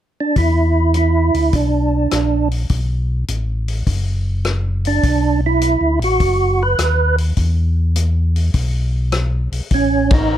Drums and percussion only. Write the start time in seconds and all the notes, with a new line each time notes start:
0.36 kick, open hi-hat
0.94 closed hi-hat
1.34 open hi-hat
1.53 kick, open hi-hat
2.11 cross-stick, closed hi-hat
2.51 open hi-hat
2.69 kick, open hi-hat
3.28 closed hi-hat
3.68 open hi-hat
3.87 kick, open hi-hat
4.45 cross-stick, closed hi-hat
4.85 open hi-hat
5.03 kick, open hi-hat
5.61 closed hi-hat
6.02 open hi-hat
6.20 kick, open hi-hat
6.78 cross-stick, closed hi-hat
7.18 open hi-hat
7.37 kick, open hi-hat
7.96 closed hi-hat
8.36 open hi-hat
8.54 kick, open hi-hat
9.12 cross-stick, closed hi-hat
9.52 open hi-hat
9.71 kick, open hi-hat
10.11 kick, ride